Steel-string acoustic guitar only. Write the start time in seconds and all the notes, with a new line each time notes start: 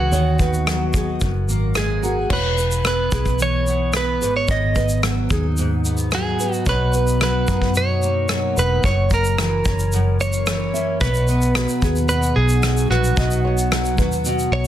Already playing: C#3 E3 C#4 E4 G#4
0.13 D#3
0.41 B3
0.68 F#3
0.94 D#4
1.22 F#2
1.49 A#3
1.76 G#3
2.03 F#4
2.30 E3
2.85 B3
3.12 E4
3.40 E3
3.67 B3
4.22 G#2
4.49 G#2
5.03 F#3
5.31 D#4
5.59 G#2
5.86 B3
6.14 F#3
6.41 D#4
6.67 B2
7.21 F#3
7.48 D#4
7.75 B2
8.02 A#3
8.30 F#3
8.57 D#4
8.85 F#2
9.40 E3
9.66 C#4
9.93 F#2
10.20 A#3
10.47 E3
10.74 C#4
11.01 B2
11.28 B3
11.55 F#3
11.82 F#4
12.09 B2
12.37 D#4
12.63 F#3
12.90 B3
13.17 B2
13.45 B3
13.71 F#3
13.99 F#4
14.26 B2